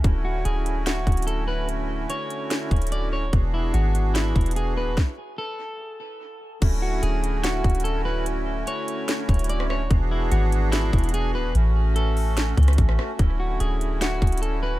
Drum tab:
CC |--------------------------------|--------------------------------|--------------------------------|--------------------------------|
HH |x-------x---x---x---xxxxx-------|x-------x---x---x---xxxxx-------|x-------x---x---x---xxxxx-------|--------------------------------|
SD |----------------o---------------|----------------o---------------|----------------o---------------|o-------------------------------|
BD |o-------------------o-----------|--------------------o-----------|o-------------------o-----------|o-------------------------------|

CC |x-------------------------------|--------------------------------|--------------------------------|--------------------------------|
HH |x-------x---x---x---xxxxx-------|x-------x---x---x---xxxxx-------|x-------x---x---x---xxxxx-------|x-------x---o---x---xxxxx-------|
SD |----------------o---------------|----------------o---------r-r---|----------------o---------------|----------------o-----r---r-r---|
BD |o-------------------o-----------|--------------------o-----------|o-------------------o-----------|--------------------o---o-------|

CC |--------------------------------|
HH |x-------x---x---x---xxxxx-------|
SD |----------------o---------------|
BD |o-------------------o-----------|